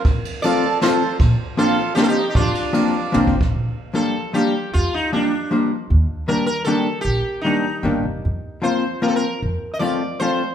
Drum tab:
RD |x--x--x-----x-----|x-----x-----x-----|x--x--x-----------|------------------|
SD |------------o-----|------------o-----|------------------|------------------|
T1 |------------------|------------------|------------o-----|------------------|
BD |o-----------------|o-----------------|o-------------o-o-|------------------|

RD |------------------|------------------|------------------|------------------|
SD |------------------|------------------|------------------|------------------|
T1 |------------------|------------------|------------------|------------------|
BD |------------------|------------------|------------------|------------------|

RD |------------------|
SD |------------------|
T1 |------------------|
BD |------------------|